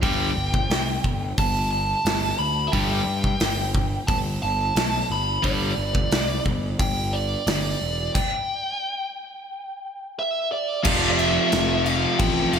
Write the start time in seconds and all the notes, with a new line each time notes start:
0.02 G1 G2 D3 G3 G5, kick, open hi-hat
0.36 G1
0.54 kick
0.70 C2, snare, open hi-hat
1.04 G1, kick
1.38 G1 A5, kick, open hi-hat
1.71 A5
2.05 G1, snare, open hi-hat
2.39 D2 B5
2.67 E5
2.72 G1 G2 D3 G3 G5, kick, open hi-hat
3.07 G2
3.24 kick
3.40 G1, snare, open hi-hat
3.75 kick
4.07 G1 A5, kick, open hi-hat
4.43 G1 A5
4.75 B1, snare, open hi-hat
5.10 G1 B5
5.43 G1 G2 D3 G3 D5, kick, open hi-hat
5.78 G1
5.95 kick
6.11 C2, snare, open hi-hat
6.46 G1, kick
6.79 G1 G5, kick, open hi-hat
7.13 D5
7.47 G1 D5, snare, open hi-hat
7.81 E1
8.14 G5, kick, crash
10.19 E5
10.52 D5
10.83 F1 F2 C3 F3 A3 C4 F5, kick, crash
11.11 D5
11.18 E5, crash
11.52 F1, snare, crash
11.84 F5, crash
12.19 A1 G5, kick, crash
12.53 F1 F5, crash